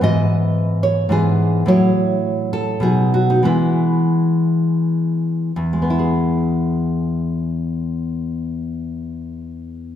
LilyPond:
\new Staff \with { instrumentName = "Nylon-string guitar" } { \time 3/4 \key e \major \tempo 4 = 86 << { dis''4. cis''8 gis'4 | cis''4. a'8 gis'8 fis'16 dis'16 | e'2 r4 | <e, gis b e' gis'>2.~ |
<e, gis b e' gis'>2. | } \\ { <gis, e b>2 <gis, e b>4 | <a, fis e'>2 <b, fis dis'>4 | <e gis b>2. | r2. |
r2. | } >> }